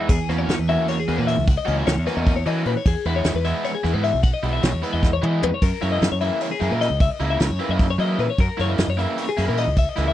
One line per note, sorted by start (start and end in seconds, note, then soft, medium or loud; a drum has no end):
0.00 1.49 E2 medium
0.09 0.18 E2 loud
0.09 0.29 G#4 medium
0.09 kick loud
0.09 crash loud
0.29 0.46 E2 loud
0.29 0.55 E3 medium
0.29 0.55 A#3 medium
0.29 0.55 C#4 medium
0.29 0.55 F#4 loud
0.29 0.38 B4 medium
0.29 snare soft
0.29 ride medium
0.38 0.59 C#5 medium
0.49 0.57 E2 loud
0.49 snare loud
0.49 ride loud
0.59 0.76 E2 medium
0.59 0.69 B4 medium
0.69 0.95 E3 medium
0.69 0.95 A#3 medium
0.69 0.94 C#4 medium
0.69 0.94 F#4 medium
0.69 0.88 E5 medium
0.69 ride medium
0.88 0.98 C#5 medium
0.88 ride loud
0.99 1.18 G#4 medium
1.08 1.17 E2 medium
1.08 1.34 E3 medium
1.08 1.34 A#3 medium
1.08 1.34 C#4 medium
1.08 1.34 F#4 loud
1.08 ride medium
1.18 1.35 A#2 loud
1.18 1.28 B4 medium
1.27 1.47 E5 medium
1.27 ride medium
1.38 1.55 C#2 loud
1.47 1.57 F#5 loud
1.47 kick loud
1.47 ride loud
1.57 1.77 D#5 medium
1.66 1.85 C#2 loud
1.66 1.93 E3 medium
1.66 1.93 A#3 medium
1.66 1.93 C#4 loud
1.66 1.92 F#4 loud
1.66 ride medium
1.77 1.87 E5 medium
1.86 1.96 C#2 loud
1.86 2.06 C#5 medium
1.86 snare loud
1.86 ride loud
1.97 2.06 E2 medium
2.07 2.33 E3 medium
2.07 2.33 A#3 medium
2.07 2.32 C#4 medium
2.07 2.32 F#4 medium
2.07 2.17 B4 medium
2.07 snare soft
2.07 ride medium
2.17 2.42 E2 loud
2.17 2.36 D#5 medium
2.26 kick loud
2.26 ride loud
2.36 2.46 C#5 medium
2.46 2.63 E3 loud
2.46 2.72 E3 medium
2.46 2.72 A#3 medium
2.46 2.72 C#4 loud
2.46 2.72 F#4 loud
2.46 2.66 D#5 medium
2.46 ride medium
2.66 2.74 A#2 loud
2.66 2.76 B4 medium
2.66 ride medium
2.77 2.86 C#5 medium
2.85 2.94 E2 loud
2.85 3.06 G#4 medium
2.85 kick loud
2.85 ride loud
3.05 3.23 E2 loud
3.05 3.32 E3 medium
3.05 3.32 G#3 medium
3.05 3.32 B3 loud
3.05 3.31 E4 loud
3.05 3.16 B4 medium
3.05 ride medium
3.16 3.35 C#5 medium
3.24 3.34 E2 loud
3.24 snare loud
3.24 ride loud
3.34 3.52 E2 medium
3.34 3.45 B4 medium
3.44 3.71 E3 medium
3.44 3.71 G#3 medium
3.44 3.71 B3 medium
3.44 3.71 E4 medium
3.44 3.64 E5 medium
3.44 snare soft
3.44 ride medium
3.64 3.74 C#5 loud
3.64 snare soft
3.64 ride loud
3.75 3.94 G#4 medium
3.84 3.93 E2 medium
3.84 4.10 E3 medium
3.84 4.10 G#3 medium
3.84 4.10 B3 medium
3.84 4.10 E4 loud
3.84 snare soft
3.84 ride medium
3.94 4.11 G#2 loud
3.94 4.04 B4 medium
4.04 4.23 E5 medium
4.04 ride medium
4.14 4.31 B1 loud
4.23 4.33 F#5 loud
4.23 kick loud
4.23 ride loud
4.34 4.53 D#5 medium
4.43 4.60 B1 loud
4.43 4.70 E3 medium
4.43 4.69 G#3 medium
4.43 4.69 B3 medium
4.43 4.69 E4 loud
4.43 ride medium
4.53 4.63 E5 medium
4.63 4.72 B1 loud
4.63 4.83 C#5 medium
4.63 snare loud
4.63 ride loud
4.73 4.82 E2 medium
4.83 5.09 E3 medium
4.83 5.09 G#3 medium
4.83 5.09 B3 medium
4.83 5.08 E4 medium
4.83 4.93 B4 medium
4.83 ride medium
4.93 5.19 E2 medium
4.93 5.13 D#5 medium
5.03 kick loud
5.03 snare medium
5.13 5.24 C#5 medium
5.22 5.40 E3 loud
5.22 5.49 E3 medium
5.22 5.48 G#3 medium
5.22 5.48 B3 medium
5.22 5.48 E4 loud
5.22 5.43 D#5 medium
5.22 mid tom medium
5.42 5.51 F2 medium
5.42 5.53 B4 medium
5.42 floor tom loud
5.54 5.63 C#5 medium
5.62 5.71 F#2 loud
5.62 5.82 A#4 loud
5.62 kick loud
5.62 ride loud
5.62 crash loud
5.81 6.00 F#2 medium
5.81 6.08 C#3 medium
5.81 6.07 E3 medium
5.81 6.07 A#3 medium
5.81 6.07 E4 loud
5.81 5.91 C#5 medium
5.81 ride medium
5.92 6.11 D#5 medium
6.02 6.10 F#2 loud
6.02 snare loud
6.02 ride loud
6.12 6.29 F#2 medium
6.12 6.21 C#5 medium
6.21 6.47 C#3 medium
6.21 6.47 E3 medium
6.21 6.47 A#3 medium
6.21 6.47 E4 medium
6.21 6.42 E5 medium
6.21 ride medium
6.40 6.51 C#5 medium
6.40 ride loud
6.51 6.72 G#4 medium
6.60 6.70 F#2 medium
6.60 6.87 C#3 medium
6.60 6.87 E3 medium
6.60 6.86 A#3 medium
6.60 6.86 E4 medium
6.60 ride medium
6.71 6.88 A#2 loud
6.71 6.81 A#4 medium
6.81 7.01 D#5 medium
6.81 snare soft
6.81 ride medium
6.90 7.08 C#2 loud
7.00 7.10 E5 loud
7.00 kick loud
7.00 ride medium
7.10 7.30 D#5 medium
7.20 7.37 C#2 loud
7.20 7.46 C#3 medium
7.20 7.46 E3 medium
7.20 7.46 A#3 medium
7.20 7.46 E4 loud
7.20 ride medium
7.30 7.41 E5 medium
7.40 7.49 C#2 loud
7.40 7.60 C#5 medium
7.40 snare loud
7.40 ride loud
7.50 7.58 F#2 medium
7.59 7.86 C#3 medium
7.59 7.86 E3 medium
7.59 7.85 A#3 medium
7.59 7.85 E4 medium
7.59 7.71 B4 medium
7.59 ride medium
7.69 7.95 F#2 medium
7.69 7.90 D#5 medium
7.79 kick loud
7.79 snare soft
7.79 ride loud
7.90 8.00 C#5 medium
7.98 8.25 C#3 medium
7.98 8.25 E3 medium
7.98 8.16 F#3 loud
7.98 8.25 A#3 loud
7.98 8.25 E4 loud
7.98 8.19 D#5 medium
7.98 ride medium
8.19 8.27 A#2 loud
8.19 8.29 B4 medium
8.19 ride medium
8.30 8.39 C#5 medium
8.38 8.47 F#2 loud
8.38 8.59 A#4 loud
8.38 kick loud
8.38 ride loud
8.58 8.76 F#2 medium
8.58 8.84 C#3 medium
8.58 8.84 E3 medium
8.58 8.84 A#3 loud
8.58 8.84 E4 loud
8.58 8.70 C#5 medium
8.58 snare soft
8.58 ride medium
8.70 8.89 D#5 medium
8.78 8.87 F#2 loud
8.78 snare loud
8.78 ride loud
8.88 9.05 F#2 medium
8.88 8.99 C#5 medium
8.97 9.24 C#3 medium
8.97 9.23 E3 medium
8.97 9.24 A#3 medium
8.97 9.23 E4 medium
8.97 9.18 E5 medium
8.97 snare soft
8.97 ride medium
9.17 9.28 C#5 medium
9.17 ride loud
9.29 9.48 G#4 medium
9.37 9.47 F#2 medium
9.37 9.64 C#3 medium
9.37 9.63 E3 medium
9.37 9.63 A#3 medium
9.37 9.63 E4 loud
9.37 snare soft
9.37 ride medium
9.49 9.65 A#2 loud
9.49 9.58 A#4 medium
9.57 9.78 D#5 medium
9.57 ride medium
9.67 9.84 C#2 medium
9.77 9.89 E5 medium
9.77 kick loud
9.77 ride loud
9.89 10.07 D#5 medium
9.96 10.13 C#2 loud
9.96 10.13 C#3 medium
9.96 10.13 E3 medium
9.96 10.13 A#3 medium
9.96 10.13 E4 loud
9.96 snare soft
9.96 ride medium
10.08 10.13 E5 medium